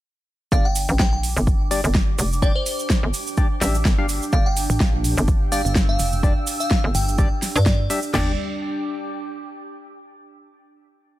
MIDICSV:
0, 0, Header, 1, 8, 480
1, 0, Start_track
1, 0, Tempo, 476190
1, 523, Time_signature, 4, 2, 24, 8
1, 11283, End_track
2, 0, Start_track
2, 0, Title_t, "Ambient pad"
2, 0, Program_c, 0, 92
2, 524, Note_on_c, 0, 62, 83
2, 798, Note_on_c, 0, 86, 95
2, 1021, Note_on_c, 0, 67, 79
2, 1392, Note_on_c, 0, 79, 83
2, 5285, Note_on_c, 0, 88, 92
2, 5436, Note_off_c, 0, 86, 0
2, 8192, Note_off_c, 0, 62, 0
2, 8202, Note_off_c, 0, 79, 0
2, 8203, Note_off_c, 0, 67, 0
2, 8203, Note_off_c, 0, 88, 0
2, 8204, Note_on_c, 0, 62, 78
2, 8285, Note_on_c, 0, 67, 81
2, 8358, Note_on_c, 0, 79, 82
2, 8422, Note_on_c, 0, 86, 82
2, 10083, Note_off_c, 0, 62, 0
2, 10083, Note_off_c, 0, 79, 0
2, 10083, Note_off_c, 0, 86, 0
2, 10084, Note_off_c, 0, 67, 0
2, 11283, End_track
3, 0, Start_track
3, 0, Title_t, "Synth bell"
3, 0, Program_c, 1, 98
3, 523, Note_on_c, 1, 77, 92
3, 630, Note_off_c, 1, 77, 0
3, 657, Note_on_c, 1, 79, 94
3, 982, Note_off_c, 1, 79, 0
3, 1003, Note_on_c, 1, 79, 91
3, 1088, Note_off_c, 1, 79, 0
3, 1137, Note_on_c, 1, 79, 77
3, 1205, Note_off_c, 1, 79, 0
3, 2443, Note_on_c, 1, 74, 91
3, 2550, Note_off_c, 1, 74, 0
3, 2575, Note_on_c, 1, 72, 92
3, 2923, Note_off_c, 1, 72, 0
3, 4364, Note_on_c, 1, 77, 92
3, 4470, Note_off_c, 1, 77, 0
3, 4496, Note_on_c, 1, 79, 96
3, 4822, Note_off_c, 1, 79, 0
3, 5563, Note_on_c, 1, 77, 89
3, 5649, Note_off_c, 1, 77, 0
3, 5696, Note_on_c, 1, 77, 77
3, 5765, Note_off_c, 1, 77, 0
3, 5936, Note_on_c, 1, 77, 93
3, 6416, Note_off_c, 1, 77, 0
3, 6656, Note_on_c, 1, 77, 94
3, 6866, Note_off_c, 1, 77, 0
3, 7003, Note_on_c, 1, 79, 92
3, 7483, Note_off_c, 1, 79, 0
3, 7616, Note_on_c, 1, 74, 90
3, 8096, Note_off_c, 1, 74, 0
3, 11283, End_track
4, 0, Start_track
4, 0, Title_t, "Synth stab"
4, 0, Program_c, 2, 62
4, 523, Note_on_c, 2, 67, 67
4, 523, Note_on_c, 2, 74, 84
4, 524, Note_on_c, 2, 55, 75
4, 524, Note_on_c, 2, 62, 70
4, 677, Note_off_c, 2, 67, 0
4, 677, Note_off_c, 2, 74, 0
4, 678, Note_off_c, 2, 55, 0
4, 678, Note_off_c, 2, 62, 0
4, 1723, Note_on_c, 2, 55, 96
4, 1723, Note_on_c, 2, 67, 89
4, 1723, Note_on_c, 2, 74, 106
4, 1724, Note_on_c, 2, 62, 86
4, 1823, Note_off_c, 2, 55, 0
4, 1823, Note_off_c, 2, 62, 0
4, 1823, Note_off_c, 2, 67, 0
4, 1823, Note_off_c, 2, 74, 0
4, 2443, Note_on_c, 2, 62, 86
4, 2444, Note_on_c, 2, 55, 92
4, 2444, Note_on_c, 2, 67, 83
4, 2444, Note_on_c, 2, 74, 101
4, 2543, Note_off_c, 2, 55, 0
4, 2543, Note_off_c, 2, 62, 0
4, 2543, Note_off_c, 2, 67, 0
4, 2543, Note_off_c, 2, 74, 0
4, 3403, Note_on_c, 2, 55, 91
4, 3403, Note_on_c, 2, 62, 84
4, 3403, Note_on_c, 2, 67, 84
4, 3403, Note_on_c, 2, 74, 97
4, 3503, Note_off_c, 2, 55, 0
4, 3503, Note_off_c, 2, 62, 0
4, 3503, Note_off_c, 2, 67, 0
4, 3503, Note_off_c, 2, 74, 0
4, 3643, Note_on_c, 2, 55, 83
4, 3643, Note_on_c, 2, 62, 79
4, 3643, Note_on_c, 2, 67, 75
4, 3643, Note_on_c, 2, 76, 93
4, 3797, Note_off_c, 2, 55, 0
4, 3797, Note_off_c, 2, 62, 0
4, 3797, Note_off_c, 2, 67, 0
4, 3797, Note_off_c, 2, 76, 0
4, 4016, Note_on_c, 2, 55, 92
4, 4016, Note_on_c, 2, 62, 84
4, 4016, Note_on_c, 2, 67, 84
4, 4016, Note_on_c, 2, 77, 102
4, 4096, Note_off_c, 2, 55, 0
4, 4096, Note_off_c, 2, 62, 0
4, 4096, Note_off_c, 2, 67, 0
4, 4096, Note_off_c, 2, 77, 0
4, 4363, Note_on_c, 2, 55, 75
4, 4363, Note_on_c, 2, 62, 70
4, 4363, Note_on_c, 2, 67, 68
4, 4363, Note_on_c, 2, 74, 80
4, 4517, Note_off_c, 2, 55, 0
4, 4517, Note_off_c, 2, 62, 0
4, 4517, Note_off_c, 2, 67, 0
4, 4517, Note_off_c, 2, 74, 0
4, 5563, Note_on_c, 2, 55, 94
4, 5563, Note_on_c, 2, 62, 86
4, 5563, Note_on_c, 2, 67, 85
4, 5563, Note_on_c, 2, 74, 108
4, 5663, Note_off_c, 2, 55, 0
4, 5663, Note_off_c, 2, 62, 0
4, 5663, Note_off_c, 2, 67, 0
4, 5663, Note_off_c, 2, 74, 0
4, 6283, Note_on_c, 2, 55, 92
4, 6283, Note_on_c, 2, 62, 85
4, 6283, Note_on_c, 2, 67, 84
4, 6283, Note_on_c, 2, 74, 100
4, 6383, Note_off_c, 2, 55, 0
4, 6383, Note_off_c, 2, 62, 0
4, 6383, Note_off_c, 2, 67, 0
4, 6383, Note_off_c, 2, 74, 0
4, 7243, Note_on_c, 2, 55, 89
4, 7243, Note_on_c, 2, 62, 84
4, 7243, Note_on_c, 2, 67, 84
4, 7243, Note_on_c, 2, 74, 102
4, 7343, Note_off_c, 2, 55, 0
4, 7343, Note_off_c, 2, 62, 0
4, 7343, Note_off_c, 2, 67, 0
4, 7343, Note_off_c, 2, 74, 0
4, 7963, Note_on_c, 2, 55, 92
4, 7963, Note_on_c, 2, 62, 84
4, 7963, Note_on_c, 2, 67, 81
4, 7963, Note_on_c, 2, 76, 97
4, 8063, Note_off_c, 2, 55, 0
4, 8063, Note_off_c, 2, 62, 0
4, 8063, Note_off_c, 2, 67, 0
4, 8063, Note_off_c, 2, 76, 0
4, 8203, Note_on_c, 2, 55, 87
4, 8204, Note_on_c, 2, 62, 80
4, 8204, Note_on_c, 2, 67, 81
4, 8204, Note_on_c, 2, 74, 96
4, 8387, Note_off_c, 2, 55, 0
4, 8387, Note_off_c, 2, 62, 0
4, 8387, Note_off_c, 2, 67, 0
4, 8387, Note_off_c, 2, 74, 0
4, 11283, End_track
5, 0, Start_track
5, 0, Title_t, "Analog synth pad"
5, 0, Program_c, 3, 89
5, 523, Note_on_c, 3, 55, 80
5, 4362, Note_on_c, 3, 60, 72
5, 8163, Note_off_c, 3, 55, 0
5, 8164, Note_off_c, 3, 60, 0
5, 8203, Note_on_c, 3, 55, 75
5, 8203, Note_on_c, 3, 62, 66
5, 8203, Note_on_c, 3, 74, 80
5, 8426, Note_off_c, 3, 55, 0
5, 8426, Note_off_c, 3, 62, 0
5, 8426, Note_off_c, 3, 74, 0
5, 11283, End_track
6, 0, Start_track
6, 0, Title_t, "FM bass"
6, 0, Program_c, 4, 39
6, 524, Note_on_c, 4, 31, 100
6, 875, Note_off_c, 4, 31, 0
6, 896, Note_on_c, 4, 33, 94
6, 986, Note_off_c, 4, 33, 0
6, 1003, Note_on_c, 4, 34, 97
6, 1355, Note_off_c, 4, 34, 0
6, 1377, Note_on_c, 4, 31, 97
6, 1835, Note_off_c, 4, 31, 0
6, 1856, Note_on_c, 4, 31, 97
6, 2186, Note_off_c, 4, 31, 0
6, 2204, Note_on_c, 4, 29, 100
6, 2555, Note_off_c, 4, 29, 0
6, 3057, Note_on_c, 4, 31, 97
6, 3146, Note_off_c, 4, 31, 0
6, 3643, Note_on_c, 4, 33, 101
6, 3866, Note_off_c, 4, 33, 0
6, 3883, Note_on_c, 4, 31, 94
6, 4235, Note_off_c, 4, 31, 0
6, 4363, Note_on_c, 4, 31, 99
6, 4715, Note_off_c, 4, 31, 0
6, 5217, Note_on_c, 4, 31, 97
6, 5675, Note_off_c, 4, 31, 0
6, 6897, Note_on_c, 4, 31, 99
6, 6986, Note_off_c, 4, 31, 0
6, 7617, Note_on_c, 4, 43, 99
6, 7946, Note_off_c, 4, 43, 0
6, 8203, Note_on_c, 4, 31, 99
6, 8426, Note_off_c, 4, 31, 0
6, 11283, End_track
7, 0, Start_track
7, 0, Title_t, "Wobble bass"
7, 0, Program_c, 5, 39
7, 4736, Note_on_c, 5, 33, 100
7, 4826, Note_off_c, 5, 33, 0
7, 4843, Note_on_c, 5, 34, 94
7, 5195, Note_off_c, 5, 34, 0
7, 5696, Note_on_c, 5, 31, 100
7, 6026, Note_off_c, 5, 31, 0
7, 6042, Note_on_c, 5, 29, 101
7, 6395, Note_off_c, 5, 29, 0
7, 7003, Note_on_c, 5, 31, 97
7, 7355, Note_off_c, 5, 31, 0
7, 11283, End_track
8, 0, Start_track
8, 0, Title_t, "Drums"
8, 523, Note_on_c, 9, 36, 121
8, 526, Note_on_c, 9, 69, 41
8, 624, Note_off_c, 9, 36, 0
8, 626, Note_off_c, 9, 69, 0
8, 761, Note_on_c, 9, 69, 91
8, 763, Note_on_c, 9, 46, 108
8, 862, Note_off_c, 9, 69, 0
8, 864, Note_off_c, 9, 46, 0
8, 891, Note_on_c, 9, 69, 49
8, 992, Note_off_c, 9, 69, 0
8, 1002, Note_on_c, 9, 38, 127
8, 1002, Note_on_c, 9, 69, 40
8, 1003, Note_on_c, 9, 36, 116
8, 1102, Note_off_c, 9, 38, 0
8, 1103, Note_off_c, 9, 69, 0
8, 1104, Note_off_c, 9, 36, 0
8, 1244, Note_on_c, 9, 46, 94
8, 1248, Note_on_c, 9, 69, 82
8, 1345, Note_off_c, 9, 46, 0
8, 1349, Note_off_c, 9, 69, 0
8, 1379, Note_on_c, 9, 69, 51
8, 1480, Note_off_c, 9, 69, 0
8, 1483, Note_on_c, 9, 36, 125
8, 1484, Note_on_c, 9, 69, 38
8, 1584, Note_off_c, 9, 36, 0
8, 1584, Note_off_c, 9, 69, 0
8, 1724, Note_on_c, 9, 46, 106
8, 1728, Note_on_c, 9, 69, 92
8, 1824, Note_off_c, 9, 46, 0
8, 1829, Note_off_c, 9, 69, 0
8, 1856, Note_on_c, 9, 69, 50
8, 1957, Note_off_c, 9, 69, 0
8, 1959, Note_on_c, 9, 69, 38
8, 1962, Note_on_c, 9, 38, 127
8, 1963, Note_on_c, 9, 36, 123
8, 2060, Note_off_c, 9, 69, 0
8, 2062, Note_off_c, 9, 38, 0
8, 2064, Note_off_c, 9, 36, 0
8, 2204, Note_on_c, 9, 46, 94
8, 2204, Note_on_c, 9, 69, 97
8, 2304, Note_off_c, 9, 46, 0
8, 2305, Note_off_c, 9, 69, 0
8, 2344, Note_on_c, 9, 69, 54
8, 2442, Note_off_c, 9, 69, 0
8, 2442, Note_on_c, 9, 69, 42
8, 2443, Note_on_c, 9, 36, 125
8, 2542, Note_off_c, 9, 69, 0
8, 2544, Note_off_c, 9, 36, 0
8, 2682, Note_on_c, 9, 69, 87
8, 2684, Note_on_c, 9, 46, 113
8, 2782, Note_off_c, 9, 69, 0
8, 2784, Note_off_c, 9, 46, 0
8, 2816, Note_on_c, 9, 69, 57
8, 2916, Note_off_c, 9, 69, 0
8, 2921, Note_on_c, 9, 38, 127
8, 2923, Note_on_c, 9, 36, 118
8, 2923, Note_on_c, 9, 69, 38
8, 3022, Note_off_c, 9, 38, 0
8, 3024, Note_off_c, 9, 36, 0
8, 3024, Note_off_c, 9, 69, 0
8, 3162, Note_on_c, 9, 69, 85
8, 3163, Note_on_c, 9, 46, 96
8, 3262, Note_off_c, 9, 69, 0
8, 3264, Note_off_c, 9, 46, 0
8, 3296, Note_on_c, 9, 69, 56
8, 3397, Note_off_c, 9, 69, 0
8, 3398, Note_on_c, 9, 69, 41
8, 3403, Note_on_c, 9, 36, 121
8, 3499, Note_off_c, 9, 69, 0
8, 3504, Note_off_c, 9, 36, 0
8, 3642, Note_on_c, 9, 38, 65
8, 3644, Note_on_c, 9, 46, 110
8, 3649, Note_on_c, 9, 69, 102
8, 3742, Note_off_c, 9, 38, 0
8, 3744, Note_off_c, 9, 46, 0
8, 3749, Note_off_c, 9, 69, 0
8, 3776, Note_on_c, 9, 69, 58
8, 3877, Note_off_c, 9, 69, 0
8, 3882, Note_on_c, 9, 38, 126
8, 3883, Note_on_c, 9, 36, 127
8, 3890, Note_on_c, 9, 69, 38
8, 3982, Note_off_c, 9, 38, 0
8, 3984, Note_off_c, 9, 36, 0
8, 3991, Note_off_c, 9, 69, 0
8, 4121, Note_on_c, 9, 69, 92
8, 4124, Note_on_c, 9, 46, 98
8, 4222, Note_off_c, 9, 69, 0
8, 4225, Note_off_c, 9, 46, 0
8, 4258, Note_on_c, 9, 69, 52
8, 4359, Note_off_c, 9, 69, 0
8, 4359, Note_on_c, 9, 69, 39
8, 4363, Note_on_c, 9, 36, 127
8, 4459, Note_off_c, 9, 69, 0
8, 4464, Note_off_c, 9, 36, 0
8, 4602, Note_on_c, 9, 69, 109
8, 4603, Note_on_c, 9, 46, 113
8, 4703, Note_off_c, 9, 69, 0
8, 4704, Note_off_c, 9, 46, 0
8, 4736, Note_on_c, 9, 69, 54
8, 4836, Note_off_c, 9, 69, 0
8, 4841, Note_on_c, 9, 38, 127
8, 4843, Note_on_c, 9, 36, 121
8, 4844, Note_on_c, 9, 69, 43
8, 4942, Note_off_c, 9, 38, 0
8, 4944, Note_off_c, 9, 36, 0
8, 4945, Note_off_c, 9, 69, 0
8, 5083, Note_on_c, 9, 46, 102
8, 5085, Note_on_c, 9, 69, 93
8, 5184, Note_off_c, 9, 46, 0
8, 5186, Note_off_c, 9, 69, 0
8, 5217, Note_on_c, 9, 69, 59
8, 5318, Note_off_c, 9, 69, 0
8, 5320, Note_on_c, 9, 69, 40
8, 5323, Note_on_c, 9, 36, 127
8, 5421, Note_off_c, 9, 69, 0
8, 5424, Note_off_c, 9, 36, 0
8, 5563, Note_on_c, 9, 46, 109
8, 5566, Note_on_c, 9, 69, 100
8, 5664, Note_off_c, 9, 46, 0
8, 5667, Note_off_c, 9, 69, 0
8, 5704, Note_on_c, 9, 69, 52
8, 5801, Note_on_c, 9, 38, 126
8, 5803, Note_on_c, 9, 36, 127
8, 5805, Note_off_c, 9, 69, 0
8, 5805, Note_on_c, 9, 69, 44
8, 5902, Note_off_c, 9, 38, 0
8, 5904, Note_off_c, 9, 36, 0
8, 5906, Note_off_c, 9, 69, 0
8, 6039, Note_on_c, 9, 69, 92
8, 6043, Note_on_c, 9, 46, 101
8, 6140, Note_off_c, 9, 69, 0
8, 6144, Note_off_c, 9, 46, 0
8, 6172, Note_on_c, 9, 69, 55
8, 6273, Note_off_c, 9, 69, 0
8, 6283, Note_on_c, 9, 36, 127
8, 6286, Note_on_c, 9, 69, 42
8, 6384, Note_off_c, 9, 36, 0
8, 6386, Note_off_c, 9, 69, 0
8, 6521, Note_on_c, 9, 69, 107
8, 6523, Note_on_c, 9, 46, 111
8, 6622, Note_off_c, 9, 69, 0
8, 6624, Note_off_c, 9, 46, 0
8, 6656, Note_on_c, 9, 69, 56
8, 6756, Note_off_c, 9, 69, 0
8, 6756, Note_on_c, 9, 69, 42
8, 6761, Note_on_c, 9, 38, 125
8, 6763, Note_on_c, 9, 36, 119
8, 6856, Note_off_c, 9, 69, 0
8, 6862, Note_off_c, 9, 38, 0
8, 6864, Note_off_c, 9, 36, 0
8, 7003, Note_on_c, 9, 46, 98
8, 7003, Note_on_c, 9, 69, 90
8, 7104, Note_off_c, 9, 46, 0
8, 7104, Note_off_c, 9, 69, 0
8, 7139, Note_on_c, 9, 69, 55
8, 7238, Note_off_c, 9, 69, 0
8, 7238, Note_on_c, 9, 69, 37
8, 7243, Note_on_c, 9, 36, 126
8, 7339, Note_off_c, 9, 69, 0
8, 7344, Note_off_c, 9, 36, 0
8, 7482, Note_on_c, 9, 38, 61
8, 7484, Note_on_c, 9, 46, 112
8, 7484, Note_on_c, 9, 69, 96
8, 7583, Note_off_c, 9, 38, 0
8, 7585, Note_off_c, 9, 46, 0
8, 7585, Note_off_c, 9, 69, 0
8, 7618, Note_on_c, 9, 69, 54
8, 7719, Note_off_c, 9, 69, 0
8, 7721, Note_on_c, 9, 38, 123
8, 7721, Note_on_c, 9, 69, 43
8, 7723, Note_on_c, 9, 36, 125
8, 7822, Note_off_c, 9, 38, 0
8, 7822, Note_off_c, 9, 69, 0
8, 7824, Note_off_c, 9, 36, 0
8, 7964, Note_on_c, 9, 46, 97
8, 7967, Note_on_c, 9, 69, 97
8, 8064, Note_off_c, 9, 46, 0
8, 8068, Note_off_c, 9, 69, 0
8, 8089, Note_on_c, 9, 69, 52
8, 8189, Note_off_c, 9, 69, 0
8, 8203, Note_on_c, 9, 38, 108
8, 8203, Note_on_c, 9, 43, 107
8, 8203, Note_on_c, 9, 49, 92
8, 8304, Note_off_c, 9, 38, 0
8, 8304, Note_off_c, 9, 43, 0
8, 8304, Note_off_c, 9, 49, 0
8, 11283, End_track
0, 0, End_of_file